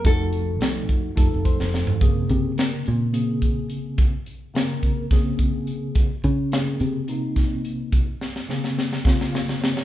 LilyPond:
<<
  \new Staff \with { instrumentName = "Nylon-string guitar" } { \time 7/8 \key bes \minor \tempo 4 = 107 a'2~ a'8 r4 | r2. r8 | r2. r8 | r2. r8 |
r2. r8 | }
  \new Staff \with { instrumentName = "Tine electric piano" } { \time 7/8 \key bes \minor r2 r8 c''4 | r2. r8 | r2. r8 | r2. r8 |
r2 r8 f''8 des''8 | }
  \new Staff \with { instrumentName = "Tine electric piano" } { \time 7/8 \key bes \minor <f a ees' ges'>4 <f a ees' ges'>4 <f a ees' a'>4. | <des bes c' aes'>4 <des bes c' bes'>4 <des bes c' aes'>4.~ | <des bes c' aes'>16 r8. <des bes c' bes'>4 <des bes c' aes'>4.~ | <des bes c' aes'>16 r8. <des bes c' aes'>4 <c bes c' ees'>4.~ |
<c bes c' ees'>16 r8. <des bes c' aes'>4 <des bes c' f'>4. | }
  \new Staff \with { instrumentName = "Fingered electric bass" } { \clef bass \time 7/8 \key bes \minor f,,4 c,8 f,,8 f,,16 f,,8 f,,8 r16 | r8 c4 bes,4. r8 | r2. r8 | r8 des4 c4. r8 |
r2. r8 | }
  \new DrumStaff \with { instrumentName = "Drums" } \drummode { \time 7/8 <hh bd>8 hh8 <hh sn>8 <hh bd>8 <hh bd>8 <hh bd>16 sn16 sn16 tomfh16 | <hh bd>8 <hh bd>8 <hh sn>8 hh8 hh8 <hh bd>8 hh8 | <hh bd>8 hh8 <hh sn>8 <hh bd>8 <hh bd sn>8 <hh bd>8 hh8 | <hh bd>8 <hh bd>8 <hh sn>8 hh8 hh8 <hh bd sn>8 hh8 |
<hh bd>8 sn16 sn16 sn16 sn16 sn16 sn16 <bd sn>16 sn16 sn16 sn16 sn16 sn16 | }
>>